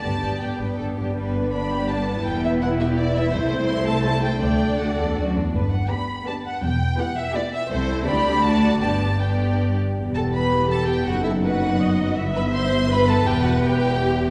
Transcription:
<<
  \new Staff \with { instrumentName = "Violin section" } { \time 3/4 \key g \major \tempo 4 = 164 a''4 g''4 r4 | b'4 b''4 a''4 | g''8 e''8 fis''8 e''8 d''8 e''8 | c''4 c'''8 a''8 a''8 g''8 |
g''4 fis''4 r4 | b'8 fis''8 b''4 a''8 fis''8 | g''4 fis''8 e''8 d''8 e''8 | c''4 b''4 a''4 |
a''4 g''4 r4 | \key e \minor r8 a''8 b''4 a''8 g''8 | fis''8 e''8 fis''2 | r8 b''8 c'''4 b''8 a''8 |
g''8 fis''8 g''2 | }
  \new Staff \with { instrumentName = "Violin section" } { \time 3/4 \key g \major << { d''8 d''8 g'8 b'8 a'8 g'8 | b'2.~ | b'2. | c''2. |
d''2~ d''8 r8 | r4 b'4 b'4 | r4 b'4 b'4 | a'4 d''4 d''4 |
d''4 d''4. r8 | \key e \minor r8 a'8 b'4 a'8 g'8 | fis'8 e'8 fis'2 | r8 b'8 c''4 b'8 a'8 |
g'8 fis'8 g'2 | } \\ { g'8 g'8 r2 | g8 b8 d'8 g'8 d'8 b8 | g8 b8 e'8 g'8 e'8 b8 | a8 c'8 e'8 a'8 e'8 c'8 |
a8 d'8 fis'8 a'8 fis'8 d'8 | r4 g'4 g'4 | r4 g'4 g'4 | a'4 g'4 fis'4 |
g'4 g'4. r8 | r2. | r2. | r2. |
r2. | } >> }
  \new Staff \with { instrumentName = "French horn section" } { \time 3/4 \key g \major << { r2. | r2. | r2. | r2. |
r2. | r2. | r2. | r2. |
r2. | \key e \minor g'2. | dis'2. | e'2.~ |
e'2. | } \\ { r2. | r2. | r2. | r2. |
r2. | r2. | r2. | r2. |
r2. | b2.~ | b2. | b2.~ |
b2. | } >> }
  \new Staff \with { instrumentName = "Viola section" } { \time 3/4 \key g \major << { d'8 d'8 d'8 d'8 d'8 d'8 | d'2. | e'2.~ | e'2. |
d'2~ d'8 r8 | r4 d'4 d'4 | r4 e'4 e'4 | e'4 d'4 d'4 |
d'4 d'4. r8 | \key e \minor r4 g'2 | a'4 b'4 dis''4 | e''2 b'4 |
b'2 g'4 | } \\ { b8 b8 b8 b8 b8 b8 | b2.~ | b2. | a2.~ |
a2~ a8 r8 | r4 b4 b4 | r4 b4 b4 | c'4 g4 a4 |
b4 b4. r8 | r2. | r2. | r2. |
r2. | } >> }
  \new Staff \with { instrumentName = "Cello section" } { \clef bass \time 3/4 \key g \major g,8 g,8 g,8 g,8 g,8 g,8 | g,2. | e,2. | c,2. |
d,4 d,8 e,8 fis,8 e,8 | g,4 r2 | e,4 r2 | c,4 d,2 |
g,2~ g,8 r8 | \key e \minor e,2. | fis,2. | g,2. |
e,2. | }
  \new Staff \with { instrumentName = "Double bass section" } { \clef bass \time 3/4 \key g \major g,,8 g,,8 g,,8 g,,8 g,,8 g,,8 | g,,2. | e,,2. | c,2. |
d,2~ d,8 r8 | g,,4 r2 | e,,4 r2 | c,4 d,2 |
g,,2~ g,,8 r8 | \key e \minor e,,2. | fis,,2. | g,,2. |
e,,2. | }
>>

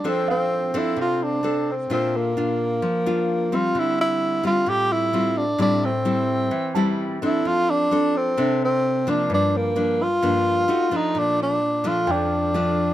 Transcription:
<<
  \new Staff \with { instrumentName = "Grand piano" } { \time 4/4 \key f \major \tempo 4 = 130 r8 f''2~ f''8 r4 | r1 | r1 | r2 r8 a''4.~ |
a''8 r2. r8 | r1 | r2 g''2 | }
  \new Staff \with { instrumentName = "Tenor saxophone" } { \time 4/4 \key f \major c'8 c'4 e'8 f'8 d'4 c'8 | c'8 bes2. f'8 | e'8 e'4 f'8 g'8 e'4 d'8 | d'8 c'2~ c'8 r8 e'8 |
f'8 d'4 c'4 c'4 d'8 | d'8 bes4 f'2 ees'8 | d'8 d'4 f'8 d'2 | }
  \new Staff \with { instrumentName = "Nylon-string guitar" } { \time 4/4 \key f \major << { <c' d' a'>4. <c' d' a'>4. <c' d' a'>8 r8 | <a d' f'>4 <d' f'>4 r8 <d' f'>4 <g c'>8~ | <g c'>4. <g c' f'>4. <g c' f'>8 r8 | <g c' e'>8 r8 <g c' e'>4 r8 <g c' e'>4 <c' d' a'>8~ |
<c' d' a'>4 <c' d' a'>4 <c' d' a'>4. <f bes d'>8~ | <f bes d'>4 <f bes d'>8 r8 <f bes d'>4 <a ees' ges'>8 <f a d'>8~ | <f a d'>4 r8 <f a d'>4. <f a d'>4 | } \\ { f2 c2 | bes,2 f2 | d2 a,2 | a,2 e2 |
f2 c2 | g,2 g,4 r4 | bes,2 f,2 | } >> }
>>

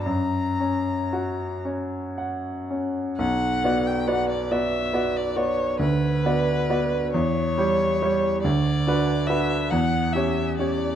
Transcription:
<<
  \new Staff \with { instrumentName = "Violin" } { \time 6/8 \key b \minor \tempo 4. = 46 ais''4. r4. | fis''8. g''16 fis''16 d''16 e''8. d''16 cis''8 | b'4. cis''4. | d''4 e''8 fis''8 e''8 d''8 | }
  \new Staff \with { instrumentName = "Grand piano" } { \time 6/8 \key b \minor fis,8 cis'8 fis'8 cis'8 fis''8 cis'8 | b,,8 <b fis' d''>8 <b fis' d''>8 <b fis' d''>8 <b fis' d''>8 <b fis' d''>8 | d,8 <b fis' d''>8 <b fis' d''>8 e,8 <g g' cis''>8 <g g' cis''>8 | d,8 <d' fis' b'>8 <d' fis' b'>8 e,8 <cis' g' cis''>8 <cis' g' cis''>8 | }
>>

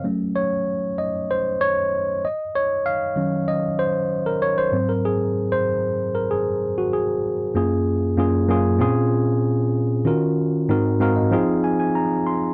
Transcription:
\new Staff \with { instrumentName = "Tine electric piano" } { \time 4/4 \key ges \lydian \tempo 4 = 96 << { r8 des''4 ees''8 c''8 des''4 ees''8 | des''8 f''4 ees''8 c''8. bes'16 des''16 c''8 bes'16 | aes'8. c''4 bes'16 aes'8. ges'16 aes'4 | r1 |
r4. f''16 ees''16 f''8 aes''16 aes''16 bes''8 c'''8 | } \\ { <ges a des'>4. r2 r8 | r4 <ees ges des'>2~ <ees ges des'>8 <aes, ges c'>8 | r1 | <ges, bes des' f' aes'>4 <ges, bes des' f' aes'>8 <ges, bes des' f' aes'>8 <bes, c' des' f' aes'>2 |
<ees des' f' ges' bes'>4 <aes, c' ees' ges' bes'>8 <aes, c' ees' ges' bes'>8 <f c' ees' f' aes'>2 | } >> }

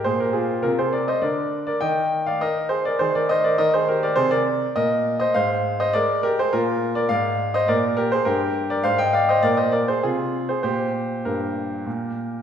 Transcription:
<<
  \new Staff \with { instrumentName = "Grand piano" } { \time 3/4 \key ees \major \tempo 4 = 102 <aes' c''>16 <g' bes'>16 <f' aes'>8 <f' bes'>16 <aes' c''>16 <bes' d''>16 <c'' ees''>16 <bes' d''>8. <bes' d''>16 | <ees'' g''>8. <d'' f''>16 <bes' ees''>8 <aes' c''>16 <bes' d''>16 <aes' c''>16 <bes' d''>16 <c'' ees''>16 <bes' d''>16 | <bes' ees''>16 <aes' c''>16 <g' bes'>16 <bes' d''>16 <aes' c''>16 <bes' d''>8. <bes' ees''>8. <c'' ees''>16 | <c'' f''>8. <c'' ees''>16 <bes' d''>8 <g' bes'>16 <aes' c''>16 <f' bes'>8. <bes' d''>16 |
<d'' f''>8. <c'' ees''>16 <bes' d''>8 <g' bes'>16 <aes' c''>16 <g' bes'>8. <bes' d''>16 | <c'' f''>16 <ees'' g''>16 <d'' f''>16 <c'' ees''>16 <bes' d''>16 <c'' ees''>16 <bes' d''>16 <aes' c''>16 <f' aes'>8. <aes' c''>16 | <g' c''>4 <g' bes'>4. r8 | }
  \new Staff \with { instrumentName = "Grand piano" } { \clef bass \time 3/4 \key ees \major bes,4 c4 d4 | ees4 ees'4 ees4 | ees4 c4 bes,4 | aes,4 aes4 bes,4 |
aes,4 bes,4 g,4 | aes,4 bes,4 c4 | bes,4 g,4 bes,4 | }
>>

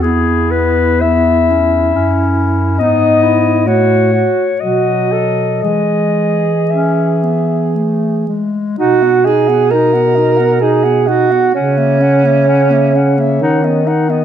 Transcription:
<<
  \new Staff \with { instrumentName = "Clarinet" } { \time 3/4 \key e \major \tempo 4 = 64 gis'8 b'8 e''4. r8 | dis''4 cis''4 dis''4 | dis''4 e''4 r4 | \key b \major dis''16 fis''16 dis''16 fis''16 dis''16 fis''16 dis''16 fis''16 dis''16 fis''16 dis''16 fis''16 |
fis''16 e''16 fis''16 e''16 fis''16 e''16 fis''16 e''16 fis''16 dis''16 fis''16 dis''16 | }
  \new Staff \with { instrumentName = "Alto saxophone" } { \time 3/4 \key e \major e'2. | dis'8 e'8 fis'8 fis'8 fis'8 a'8 | gis'2~ gis'8 r8 | \key b \major fis'8 gis'8 ais'4 gis'8 fis'8 |
cis'2~ cis'8 r8 | }
  \new Staff \with { instrumentName = "Clarinet" } { \time 3/4 \key e \major b4 b8 cis'8 cis'4 | b4 a8. r16 fis4 | gis4 cis'8 b8 a8 gis8 | \key b \major dis'16 b16 dis'16 b16 dis'16 b16 dis'16 b16 dis'16 b16 dis'16 b16 |
cis'16 ais16 cis'16 ais16 cis'16 ais16 cis'16 ais16 dis'16 b16 dis'16 b16 | }
  \new Staff \with { instrumentName = "Bass clarinet" } { \clef bass \time 3/4 \key e \major e,2 fis,4 | gis,4 a,8 r8 b,4 | e2~ e8 r8 | \key b \major b,2. |
cis2 dis4 | }
>>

